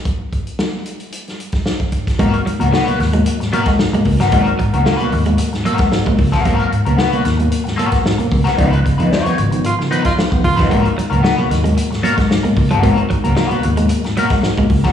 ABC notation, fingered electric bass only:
X:1
M:4/4
L:1/16
Q:1/4=113
K:G#dor
V:1 name="Fingered electric bass" clef=bass
z16 | G,,,2 z C,, z2 D,,2 z6 C,, =G,,, | G,,,2 z C,, z2 D,,2 z6 C,, =G,,, | G,,,2 z C,, z2 D,,2 z6 C,, ^B,,, |
C,,2 z E,, z2 G,,,2 z6 E,,, =G,,, | G,,,2 z C,, z2 D,,2 z6 C,, =G,,, | G,,,2 z C,, z2 D,,2 z6 C,, =G,,, |]